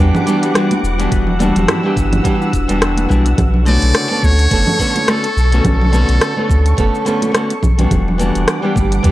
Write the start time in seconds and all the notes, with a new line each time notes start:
Already playing: E3 G3 A3 B3 E4 F#4 F#5 D6
0.00 E2 B3 D4 G4, cabasa
0.14 E4, low conga, cabasa
0.26 E3 G3 B3 D4 G4, closed hi-hat, cabasa
0.43 B3, closed hi-hat, cabasa
0.54 E3 G3 B3 D4 F#4, cross-stick, closed hi-hat, cabasa
0.71 D4, closed hi-hat, high conga, cabasa
0.83 E1, cabasa
0.98 E3 G3 B3 D4 E4 F#4, closed hi-hat, cabasa
1.12 E1 B3 E6, kick, closed hi-hat, cabasa
1.27 low conga
1.39 E3 G3 B3 D4 F#4, closed hi-hat, high conga, cabasa
1.56 E1, closed hi-hat, low conga, cabasa
1.68 E4, cross-stick, closed hi-hat, low conga, cabasa
1.83 E3 G3 B3 D4 G4
1.96 G1 B3, kick, closed hi-hat, cabasa
2.13 closed hi-hat, high conga, low conga, cabasa
2.24 E3 G3 B3 D4 G4, kick, closed hi-hat, cabasa
2.41 E4, cabasa
2.53 E1, kick, closed hi-hat, cabasa
2.68 E1 E3 G3 B3 D4 F#4 B4, closed hi-hat, cabasa
2.82 cross-stick, closed hi-hat, cabasa
2.97 B3, closed hi-hat, high conga, cabasa
3.09 B1 E3 G3 B3 D4 E4 F#4, kick, cabasa
3.26 D4, closed hi-hat, cabasa
3.38 B1 A4 C#6, kick, closed hi-hat, low conga, cabasa
3.54 low conga
3.65 C#3 D3 A3 B3 F#4 D5, closed hi-hat, high conga, cabasa
3.82 B1, closed hi-hat, cabasa
3.95 cross-stick, closed hi-hat, cabasa
4.10 D3 A3 B3 C#4 A4
4.23 D2 C#5, kick, high conga, cabasa
4.39 closed hi-hat, cabasa
4.50 F#1 D3 A3 B3 C#4 A4, kick, closed hi-hat, cabasa
4.67 low conga, cabasa
4.79 D3 A3 B3 C#4 A4, kick, closed hi-hat, cabasa
4.96 closed hi-hat, high conga, cabasa
5.07 D3 A3 B3 C#4 F#4 A4, cross-stick, closed hi-hat, cabasa
5.24 closed hi-hat, cabasa
5.37 B1, cabasa
5.51 D3 A3 B3 C#4 F#4, closed hi-hat, cabasa
5.65 B1 A4, kick, closed hi-hat, low conga, cabasa
5.81 low conga
5.92 D3 A3 B3 C#4 F#4, closed hi-hat, high conga, cabasa
6.09 B1, closed hi-hat, cabasa
6.21 cross-stick, closed hi-hat, cabasa
6.36 D3 A3 B3 C#4 A4
6.50 D2, kick, high conga, cabasa
6.66 closed hi-hat, cabasa
6.77 F#1 D3 A3 B3 C#4 A4, kick, closed hi-hat, cabasa
6.95 cabasa
7.05 D3 A3 B3 C#4 A4, closed hi-hat, cabasa
7.22 closed hi-hat, high conga, cabasa
7.33 D3 A3 B3 C#4 F#4, cross-stick, closed hi-hat, cabasa
7.50 closed hi-hat, cabasa
7.63 B1, kick, low conga, cabasa
7.78 E3 G3 B3 D4 F#4, closed hi-hat, low conga, cabasa
7.91 E1 G3 F#5 D6, kick, closed hi-hat, low conga, cabasa
8.08 low conga
8.18 E3 G3 B3 D4 F#4, closed hi-hat, high conga, cabasa
8.35 E1, closed hi-hat, cabasa
8.48 cross-stick, closed hi-hat, cabasa
8.62 E3 G3 B3 D4 G4
8.76 G1, kick, high conga, cabasa
8.92 closed hi-hat, cabasa
9.03 E2 E3 G3 B3 D4 G4, kick, closed hi-hat, cabasa